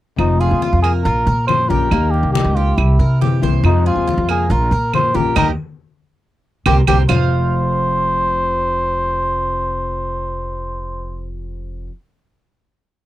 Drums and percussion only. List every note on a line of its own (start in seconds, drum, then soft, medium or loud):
0.19 high conga soft
0.19 claves medium
0.41 high conga soft
0.62 high conga medium
0.84 high conga soft
0.84 claves medium
1.05 high conga soft
1.27 high conga soft
1.48 high conga medium
1.48 claves medium
1.71 high conga medium
1.91 high conga soft
1.91 claves medium
2.14 high conga soft
2.35 high conga medium
2.57 high conga soft
2.78 high conga soft
2.78 claves medium
3.01 high conga soft
3.22 high conga medium
3.43 high conga medium
3.65 high conga soft
3.65 claves medium
3.87 high conga soft
4.09 high conga medium
4.29 high conga soft
4.29 claves medium
4.51 high conga soft
4.72 high conga soft
4.94 high conga medium
4.94 claves medium
5.15 high conga medium
5.36 high conga medium
5.36 claves medium
6.66 high conga medium
6.66 claves medium
6.87 high conga medium
6.87 claves medium
7.09 low conga medium
7.09 claves medium